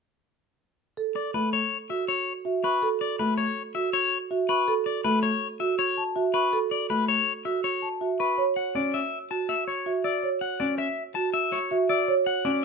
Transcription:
0.97 A4
1.16 D5
1.34 A3 B4
1.53 C#5
1.90 F#4 E5
2.08 C#5
2.45 F#4 E5
2.64 B4 C#6
2.82 A4
3.01 D5
3.19 A3 B4
3.38 C#5
3.75 F#4 E5
3.93 C#5
4.31 F#4 E5
4.49 B4 C#6
4.68 A4
4.86 D5
5.04 A3 B4
5.23 C#5
5.60 F#4 E5
5.79 C#5
5.97 A5
6.16 F#4 E5
6.34 B4 C#6
6.53 A4
6.71 D5
6.90 A3 B4
7.08 C#5
7.45 F#4 E5
7.64 C#5
7.82 A5
8.01 F#4 E5
8.19 B4 C#6
8.38 C#5
8.56 F#5
8.75 C#4 D5
8.94 E5
9.31 F#4 A5
9.49 E5
9.68 C#5 C#6
9.86 F#4 E5
10.04 D5 E6
10.23 C#5
10.41 F#5
10.60 C#4 D5
10.78 E5
11.15 F#4 A5
11.34 E5
11.52 C#5 C#6
11.71 F#4 E5
11.89 D5 E6
12.08 C#5
12.27 F#5
12.45 C#4 D5

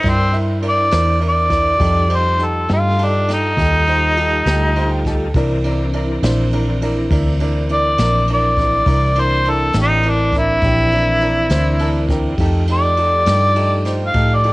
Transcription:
Already playing: D4 D#4 E4 A#4 C5
0.03 G2 E4 A#4 D5, kick, ride
0.09 C4
0.33 E4 A#4 E5, ride
0.62 E4 A#4 D5, ride
0.69 D5
0.91 E2 E4 A#4 C5, snare, ride
1.20 E4 A#4 D5, ride
1.29 D5
1.49 E4 A#4 D5, kick, snare, ride
1.76 G3 D#4 F4 G4 A4, kick
1.80 F2 D#4 A4, ride
2.09 D#4 G4 C5, ride
2.16 C5
2.39 D#4 G4 A4, ride
2.44 A4
2.68 G2 D#4 G4 A4, snare, ride
2.73 F4
2.98 D#4 G4 A4, ride
3.05 D4
3.28 D#4 G4 A4, snare, ride
3.33 D#4
3.57 D#2 D#4 G4 A4, kick, ride
3.87 D#4 G4 C5, ride
4.17 D#4 G4 A4, ride
4.46 D2 D#4 G4 A4, snare, ride
4.76 D#4 G4 C5 D#5, ride
4.91 G5
5.05 D#4 G4 A4 A5, kick, snare, ride
5.34 C2 E3 C4 D4 E4 A#4, kick, ride
5.64 D4 E4 A#4, ride
5.93 D4 E4 A#4, ride
6.22 A#1 D4 E4 C5, snare, ride
6.52 D4 E4 A#4, ride
6.81 D4 E4 A#4, ride
7.10 D2 D4 E4 A#4, kick, ride
7.40 D4 E4 A#4, ride
7.69 D4 E4 A#4 D5, ride
7.98 A#1 D4 E4 A#4, snare, ride
8.28 D4 E4 A#4, ride
8.34 D5
8.57 D4 E4 A#4, kick, ride
8.86 C2 E3 C4 D4 E4 A#4, kick, ride
9.15 D4 E4 A#4, ride
9.21 C5
9.45 D4 E4 A#4, ride
9.50 A4
9.73 A1 D4 E4 G4, snare, ride
9.82 D#4
10.03 D4 E4 A#4, ride
10.09 D4
10.32 D4 A#4, kick, ride
10.36 E4
10.61 A#1 D4 E4 G4, kick, ride
10.92 D4 E4 A#4, ride
11.21 D4 E4 A#4, ride
11.50 D2 D4 E4 C5, snare, ride
11.79 D4 E4 A#4 A5, ride
12.09 D4 E4 A#4 G5, kick, snare, ride
12.37 F2 F3 A3 D#4 G4 A4, kick, ride
12.68 D#4 G4 A4, ride
12.72 D5
12.97 D#4 G4 A4, ride
13.26 G2 D#4 G4 A4, snare, ride
13.56 D#4 G4 A4, ride
13.85 D#4 G4 C5, snare, ride
14.06 F5
14.14 A2 D#4 G4 A4, kick, ride
14.35 D5
14.44 D#4 G4 A4, ride

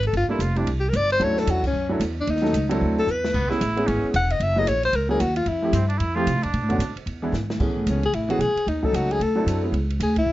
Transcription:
Already playing: G#1
0.03 A4, ride
0.13 G1 F4, ride
0.29 G3 A#3 D4 E4 F4 A4, muted upright bass stroke
0.39 F1 F4, hi-hat pedal, ride
0.56 G3 C4 D4 E4 G4, ride
0.66 C2, ride
0.80 G4
0.89 G1 A#4
0.93 D5, hi-hat pedal, ride
1.10 C5, ride
1.20 D2 F#3 C#4 D4 E4 A4, ride
1.24 C#5
1.37 A4, snare
1.47 E2 F#4, hi-hat pedal, ride
1.63 C#4, kick, crash
1.73 F#2
1.89 F#3 C#4 D4 E4 A4
2.00 E2, hi-hat pedal, ride
2.20 D4
2.27 D#2 D#4, ride
2.36 snare
2.42 F#3 A3 C#4 D#4 A4, snare
2.53 C#2, hi-hat pedal, ride
2.69 F#3 C4 D4 E4 A4, ride
2.81 D2
2.99 A4
3.07 E2, hi-hat pedal
3.11 B4
3.24 snare
3.34 C#2 B3, kick, crash
3.49 G#3 B3 C#4 E4 G#4, muted upright bass stroke, snare
3.61 A1, hi-hat pedal, ride
3.76 G#3 B3 C#4 E4 G#4, ride
3.87 G#1 C#4, ride
4.04 muted upright bass stroke
4.14 E1 F#5, hi-hat pedal, ride
4.30 D#5, ride
4.40 F#1 E5, ride
4.56 F#3 A#3 C#4 E4 G#4 D#5
4.67 A#1 C#5, hi-hat pedal, ride
4.83 C5, ride
4.93 C#2 A#4, ride
5.09 F#3 A#3 C#4 E4 G#4 A#4
5.20 D#2 F#4, hi-hat pedal, ride
5.36 F4, ride
5.46 F2 E4, ride
5.62 F3 A3 C4 E4 G4
5.73 G2 C4, hi-hat pedal, ride
5.88 D4, ride
5.98 F2 E4, ride
6.15 F3 A3 C4 E4 F4 G4
6.27 C3, hi-hat pedal, ride
6.35 A2
6.43 F2 D4, ride
6.53 B2, ride
6.62 A2
6.69 F#2 D3 A3 B3 C#4 F#4, ride
6.78 A2, hi-hat pedal, ride
6.96 muted upright bass stroke, ride
7.06 E2, ride
7.22 E3 G#3 B3 D4 E4
7.32 G#2, snare, hi-hat pedal
7.50 snare
7.59 A2 E3 A3 B3 C#4 G#4, kick, crash
7.86 C#2 C#4, hi-hat pedal, ride
8.03 G#4, ride
8.13 A1 E4, ride
8.29 E3 A3 B3 C#4 F#4 G#4, ride
8.39 B1 G#4, hi-hat pedal, ride
8.55 muted upright bass stroke, ride
8.66 D#2 D#4, ride
8.83 F#3 A3 C#4 D#4 A4, kick
8.93 C#2 F#4, hi-hat pedal, ride
9.11 G#4, ride
9.20 D2 A4, ride
9.36 F#3 C4 D4 E4 A4
9.46 F#2, hi-hat pedal, ride
9.63 G#3 B3 C#4 E4 G#4
9.72 C#2, ride
9.90 ride
10.00 D2 G#4, hi-hat pedal, ride
10.16 E4, kick, ride
10.26 E2

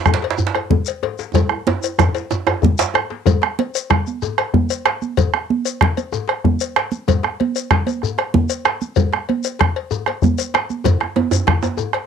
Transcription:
0.06 bombo rim, bombo low, djembe tone, low conga, djembe bass, shekere
0.14 djembe slap
0.22 cowbell, djembe slap
0.30 djembe slap
0.38 djembe slap, high conga, djembe bass, shekere
0.47 djembe slap
0.55 bombo rim, cowbell, djembe tone
0.70 bombo low, high conga, djembe bass, low conga
0.86 cowbell, shekere
1.03 cowbell, djembe tone
1.18 djembe slap, shekere
1.34 bombo low, cowbell, djembe tone, low conga, djembe bass, shekere
1.49 bombo rim, djembe slap, djembe tone
1.67 cowbell, djembe slap, high conga, djembe tone
1.83 cowbell, shekere
1.98 bombo rim, bombo low, djembe slap, djembe tone, high conga, djembe bass, low conga, shekere
2.15 cowbell, djembe slap, shekere
2.31 bombo rim, djembe tone, high conga, shekere
2.47 bombo rim, cowbell, djembe tone
2.62 bombo low, djembe slap, high conga, djembe bass, low conga, shekere
2.78 bombo rim, cowbell, djembe slap, shekere
2.94 bombo rim, cowbell, djembe tone
3.10 bombo rim, djembe slap, high conga
3.26 bombo low, cowbell, djembe tone, high conga, djembe bass, low conga, shekere
3.42 bombo rim, djembe slap, high conga
3.59 cowbell, high conga
3.75 cowbell, shekere
3.90 bombo rim, bombo low, djembe slap, low conga
4.07 high conga, shekere
4.22 bombo rim, djembe tone, djembe bass, shekere
4.38 bombo rim, cowbell, djembe slap
4.54 bombo rim, bombo low, high conga, low conga
4.70 cowbell, shekere
4.85 bombo rim, cowbell, djembe slap
5.02 high conga, shekere
5.17 bombo low, cowbell, djembe tone, high conga, djembe bass, low conga, shekere
5.34 bombo rim, djembe slap, high conga
5.50 high conga
5.65 cowbell, shekere
5.81 bombo rim, bombo low, djembe slap, low conga
5.97 cowbell, high conga, shekere
6.12 bombo rim, djembe tone, djembe bass, shekere
6.28 bombo rim, cowbell, djembe slap
6.44 bombo rim, bombo low, high conga, low conga
6.60 cowbell, shekere
6.76 bombo rim, cowbell, djembe slap
6.92 high conga, shekere
7.08 bombo low, cowbell, djembe tone, high conga, djembe bass, low conga, shekere
7.23 bombo rim, djembe slap, high conga
7.40 cowbell, high conga
7.56 cowbell, shekere
7.71 bombo rim, bombo low, djembe slap, low conga
7.87 cowbell, high conga, shekere
8.02 bombo rim, djembe tone, djembe bass, shekere
8.18 bombo rim, cowbell, djembe slap
8.34 bombo rim, bombo low, high conga, low conga
8.50 cowbell, shekere
8.65 bombo rim, cowbell, djembe slap
8.81 high conga, shekere
8.96 bombo low, cowbell, djembe slap, djembe tone, djembe bass, low conga, shekere
9.13 bombo rim, djembe slap, high conga
9.28 cowbell, djembe slap, high conga
9.44 cowbell, djembe slap, shekere
9.59 bombo rim, bombo low, djembe slap, low conga
9.76 bombo rim, cowbell
9.91 djembe slap, djembe tone, djembe bass, shekere
10.06 bombo rim, cowbell, djembe slap, high conga
10.22 bombo low, djembe slap, high conga, low conga, shekere
10.38 cowbell, djembe slap, shekere
10.54 bombo rim, cowbell, djembe slap, high conga
10.69 djembe slap, high conga, shekere
10.84 bombo low, cowbell, djembe tone, high conga, djembe bass, low conga, shekere
11.00 bombo rim, djembe slap, high conga
11.16 cowbell, djembe tone, high conga
11.31 cowbell, djembe bass, shekere
11.47 bombo rim, bombo low, djembe slap, low conga
11.62 cowbell, djembe tone, high conga, shekere
11.77 bombo rim, djembe tone, djembe bass, shekere
11.93 bombo rim, cowbell, djembe slap

